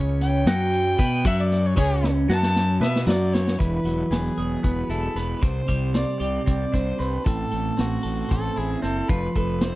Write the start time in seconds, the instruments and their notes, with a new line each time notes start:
Already playing: fingered electric bass C#2, clean electric guitar C#3 C#4
0.21 fiddle G5, snare, closed hi-hat
0.45 fingered electric bass F#2, clean electric guitar F#3 F#4, snare, closed hi-hat
0.73 closed hi-hat
0.98 fingered electric bass B2, clean electric guitar B3 B4, kick, closed hi-hat
1.25 fingered electric bass F#2, clean electric guitar F#3 F#4, fiddle E5, kick, closed hi-hat
1.40 fiddle D5
1.52 snare, closed hi-hat
1.66 fiddle C#5
1.76 fingered electric bass C#2, clean electric guitar C#3 C#4, fiddle G#4, kick, closed hi-hat
2.04 snare
2.28 fingered electric bass F#2, clean electric guitar F#3 F#4, fiddle A5, snare
2.43 snare
2.56 snare
2.80 fingered electric bass B2, clean electric guitar B3 B4, fiddle E5, snare
2.96 snare
3.06 fingered electric bass F#2, clean electric guitar F#3 F#4, fiddle D5, snare
3.33 fiddle C#5, snare
3.48 snare
3.59 fingered electric bass E1, clean electric guitar E3, fiddle B4, kick, closed hi-hat
3.84 fingered electric bass E1, clean electric guitar F#3, closed hi-hat
4.11 fingered electric bass E1, clean electric guitar B3, fiddle G#4, snare, closed hi-hat
4.38 fingered electric bass E1, clean electric guitar G#4, closed hi-hat
4.63 fingered electric bass E1, clean electric guitar B3, fiddle B4, kick, closed hi-hat
4.89 fingered electric bass E1, clean electric guitar E4, fiddle A4, closed hi-hat
5.15 fingered electric bass E1, clean electric guitar B3, fiddle B4, snare, closed hi-hat
5.42 fingered electric bass C2, clean electric guitar C3, fiddle C5, kick, closed hi-hat
5.68 fingered electric bass C2, clean electric guitar G3, kick, closed hi-hat
5.94 clean electric guitar C4, fiddle D5, snare, closed hi-hat
6.20 fingered electric bass C2, clean electric guitar G4, fiddle D5, closed hi-hat
6.46 fingered electric bass C2, clean electric guitar C4, fiddle D5, kick, closed hi-hat
6.73 fingered electric bass C2, clean electric guitar D4, fiddle C5, kick, snare, closed hi-hat
6.98 fingered electric bass C2, clean electric guitar C4, fiddle B4, closed hi-hat
7.24 fingered electric bass A1, clean electric guitar A2, fiddle A4, kick, closed hi-hat
7.52 fingered electric bass A1, clean electric guitar A3, closed hi-hat
7.77 fingered electric bass A1, clean electric guitar C4, fiddle F#4, snare, closed hi-hat
8.03 fingered electric bass A1, clean electric guitar A4, closed hi-hat
8.29 fingered electric bass A1, clean electric guitar C4, fiddle A4, kick, closed hi-hat
8.56 fingered electric bass A1, clean electric guitar E4, fiddle G#4, closed hi-hat
8.82 fingered electric bass F#1, clean electric guitar C4, fiddle A4, snare, closed hi-hat
9.08 fingered electric bass F1, clean electric guitar F3, fiddle B4, kick, closed hi-hat
9.34 fingered electric bass F1, clean electric guitar A3, fiddle B4, kick, closed hi-hat
9.61 clean electric guitar C4, fiddle C5, snare, closed hi-hat